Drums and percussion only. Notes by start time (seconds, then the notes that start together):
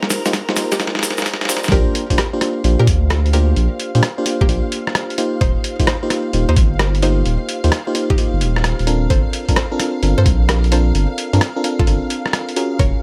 0.03 snare
0.10 snare, closed hi-hat, shaker
0.25 snare, closed hi-hat, shaker
0.33 kick, snare, closed hi-hat, shaker
0.49 snare
0.56 snare, closed hi-hat, shaker
0.72 snare, shaker
0.80 kick, snare, closed hi-hat, shaker
0.87 snare
0.95 snare
0.99 snare
1.03 snare, closed hi-hat, shaker
1.10 snare
1.18 snare, shaker
1.22 kick, snare, shaker
1.26 snare, closed hi-hat
1.34 snare
1.41 snare, closed hi-hat
1.45 snare
1.49 snare, closed hi-hat, shaker
1.57 snare
1.64 snare, shaker
1.68 kick, snare, closed hi-hat
1.95 closed hi-hat
2.10 kick, closed hi-hat
2.18 cross-stick, closed hi-hat
2.41 cross-stick, closed hi-hat
2.64 closed hi-hat
2.87 kick, closed hi-hat
3.10 cross-stick, closed hi-hat
3.26 closed hi-hat
3.33 closed hi-hat
3.56 closed hi-hat
3.80 closed hi-hat
3.95 closed hi-hat
4.03 cross-stick, closed hi-hat
4.26 closed hi-hat
4.41 kick
4.49 closed hi-hat
4.72 closed hi-hat
4.87 cross-stick
4.95 cross-stick, closed hi-hat
5.10 closed hi-hat
5.18 closed hi-hat
5.41 kick, closed hi-hat
5.64 closed hi-hat
5.80 kick, closed hi-hat
5.87 cross-stick, closed hi-hat
6.10 cross-stick, closed hi-hat
6.33 closed hi-hat
6.56 kick, closed hi-hat
6.79 cross-stick, closed hi-hat
6.95 closed hi-hat
7.02 closed hi-hat
7.26 closed hi-hat
7.49 closed hi-hat
7.64 closed hi-hat
7.72 cross-stick, closed hi-hat
7.95 closed hi-hat
8.10 kick
8.18 closed hi-hat
8.41 closed hi-hat
8.56 cross-stick
8.64 cross-stick, closed hi-hat
8.79 closed hi-hat
8.87 closed hi-hat
9.10 kick, closed hi-hat
9.33 closed hi-hat
9.49 kick, closed hi-hat
9.56 cross-stick, closed hi-hat
9.80 cross-stick, closed hi-hat
10.03 closed hi-hat
10.26 kick, closed hi-hat
10.49 cross-stick, closed hi-hat
10.64 closed hi-hat
10.72 closed hi-hat
10.95 closed hi-hat
11.18 closed hi-hat
11.33 closed hi-hat
11.41 cross-stick, closed hi-hat
11.64 closed hi-hat
11.79 kick
11.87 closed hi-hat
12.10 closed hi-hat
12.26 cross-stick
12.33 cross-stick, closed hi-hat
12.49 closed hi-hat
12.56 closed hi-hat
12.79 kick, closed hi-hat